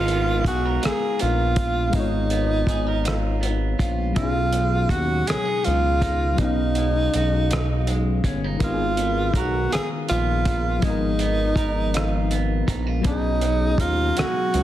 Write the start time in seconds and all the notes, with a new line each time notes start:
Already playing: G#1 G#3 B3 D#4 F4 A#4 F5
0.08 B3, closed hi-hat
0.45 B1 F#4 G#4, kick, closed hi-hat
0.66 A#4
0.82 A#1 F4, cross-stick, closed hi-hat
0.86 G#4
1.19 A#1 B3 F4, closed hi-hat
1.56 F4, kick, closed hi-hat
1.90 G#3 B3, kick, closed hi-hat
1.95 G#1 G#3 D#4 F4
2.00 C#5
2.30 B3, closed hi-hat
2.67 G#1 G#4, kick, closed hi-hat
2.87 A#4
3.04 F4, cross-stick, closed hi-hat
3.41 B3, closed hi-hat
3.79 A#1 F4, kick, closed hi-hat
4.13 B2 F#3 B3, kick, closed hi-hat
4.17 B1 C#4 D#4 F4
4.23 G#4
4.53 G#3, closed hi-hat
4.89 D#2 F#4, kick, closed hi-hat
5.27 C#2 C#4 G#4, cross-stick, closed hi-hat
5.45 D#4
5.64 C#2 G#3 F4, closed hi-hat
6.02 D#4, kick, closed hi-hat
6.34 F#3 B3
6.38 B1 B2 C#4 D#4, kick, closed hi-hat
6.44 F5
6.75 G#3, closed hi-hat
7.14 B1 F#4, closed hi-hat
7.50 D#4, cross-stick, closed hi-hat
7.87 G#3, closed hi-hat
8.24 G1 C#4, kick, closed hi-hat
8.44 D#4
8.57 D#3 A#4, kick, closed hi-hat
8.61 G#1 G#3 B3 D#4 F4
8.67 G4
8.74 G#4
8.97 B3, closed hi-hat
9.34 B1 A#4, kick, closed hi-hat
9.38 F#4
9.72 A#1 F4 G#4, cross-stick, closed hi-hat
10.09 A#1 B3 F4, closed hi-hat
10.45 F4, kick, closed hi-hat
10.79 F3 G#3, kick, closed hi-hat
10.83 G#1 B3 D#4
10.90 A#4
11.19 B3, closed hi-hat
11.56 G#1 A#4, kick, closed hi-hat
11.94 F4, cross-stick, closed hi-hat
12.31 B3, closed hi-hat
12.67 A#1 D#4, kick, closed hi-hat
12.87 F4
13.01 B2 F#3 B3, kick, closed hi-hat
13.06 B1 C#4 D4 D#4
13.11 G#4
13.15 D#4
13.41 F#3, closed hi-hat
13.78 D#2 D#4 F4, kick, closed hi-hat
14.16 C#2 G#3 F#4, cross-stick, closed hi-hat
14.53 C#2 F#3, closed hi-hat